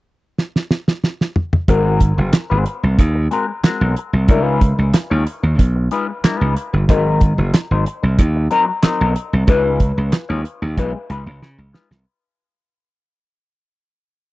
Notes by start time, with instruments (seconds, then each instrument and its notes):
0.38 snare
0.56 snare
0.71 snare
0.88 snare
1.04 snare
1.21 snare
1.36 mid tom
1.53 mid tom
1.68 slap bass G#1, clean electric guitar G#3 C4 F#4 A#4, kick, closed hi-hat
2.00 kick, closed hi-hat
2.18 slap bass F#1, muted clean electric guitar stroke
2.33 muted clean electric guitar stroke, snare, clap, closed hi-hat
2.50 slap bass G#1, clean electric guitar G#3 C4 F#4 C5
2.66 closed hi-hat
2.83 slap bass C2, muted clean electric guitar stroke
2.99 slap bass D#2, muted clean electric guitar stroke, kick, closed hi-hat
3.15 muted clean electric guitar stroke
3.31 clean electric guitar G#3 C4 F#4 A#4, closed hi-hat
3.48 muted clean electric guitar stroke
3.63 clean electric guitar G#3 C4 F#4 A#4, muted slap bass stroke, snare, clap, closed hi-hat
3.81 slap bass B1
3.96 muted clean electric guitar stroke, closed hi-hat
4.13 slap bass C2, muted clean electric guitar stroke
4.28 slap bass C#2, clean electric guitar G3 D4 E4 A#4, kick, closed hi-hat
4.41 clean electric guitar G#3 D#4 F4 B4
4.61 kick, closed hi-hat
4.79 slap bass C#2, muted clean electric guitar stroke
4.93 muted clean electric guitar stroke, snare, clap, closed hi-hat
5.10 slap bass D#2, clean electric guitar G#3 D#4 F4 C#5
5.26 muted clean electric guitar stroke, closed hi-hat
5.43 slap bass D#2, muted clean electric guitar stroke
5.58 slap bass B1, muted clean electric guitar stroke, kick, closed hi-hat
5.76 muted clean electric guitar stroke
5.91 clean electric guitar G#3 D#4 F4 B4, closed hi-hat
6.09 muted clean electric guitar stroke
6.24 clean electric guitar G3 D4 E4 A#4, muted slap bass stroke, snare, clap, closed hi-hat
6.37 clean electric guitar G#3 D#4 F4 B4
6.41 slap bass C#2
6.56 muted clean electric guitar stroke, closed hi-hat
6.73 slap bass G1, muted clean electric guitar stroke
6.89 slap bass G#1, clean electric guitar F#3 C4 D#4 A#4, kick, closed hi-hat
7.21 kick, closed hi-hat
7.38 slap bass F#1, muted clean electric guitar stroke
7.54 muted clean electric guitar stroke, snare, clap, closed hi-hat
7.71 slap bass G#1, clean electric guitar F#3 C4 D#4 C5
7.86 closed hi-hat
8.03 slap bass C2, muted clean electric guitar stroke
8.18 slap bass D#2, muted clean electric guitar stroke, kick, closed hi-hat
8.36 muted clean electric guitar stroke
8.51 clean electric guitar F#3 C4 D#4 A#4, closed hi-hat
8.68 muted clean electric guitar stroke
8.83 clean electric guitar F#3 C4 D#4 A#4, muted slap bass stroke, snare, clap, closed hi-hat
9.01 slap bass B1
9.15 muted clean electric guitar stroke, closed hi-hat
9.33 slap bass C2, muted clean electric guitar stroke
9.47 slap bass C#2, clean electric guitar G#3 D#4 F4 B4, kick, closed hi-hat
9.80 kick, closed hi-hat
9.97 slap bass C#2, muted clean electric guitar stroke
10.12 muted clean electric guitar stroke, snare, clap, closed hi-hat
10.29 slap bass D#2, clean electric guitar G#3 D#4 F4 C#5
10.44 muted clean electric guitar stroke, closed hi-hat
10.62 slap bass D#2, muted clean electric guitar stroke
10.77 slap bass B1, clean electric guitar G#3 D#4 F4 B4, kick, closed hi-hat
10.95 muted clean electric guitar stroke
11.10 slap bass C#2, clean electric guitar G#3 D#4 F4 B4, closed hi-hat
11.26 slap bass C#2, muted clean electric guitar stroke
11.42 slap bass C#3, muted clean electric guitar stroke, snare
11.58 slap bass C#2, muted clean electric guitar stroke
11.73 clean electric guitar G#3 D#4 F4 B4, snare
11.91 slap bass C2, muted clean electric guitar stroke, snare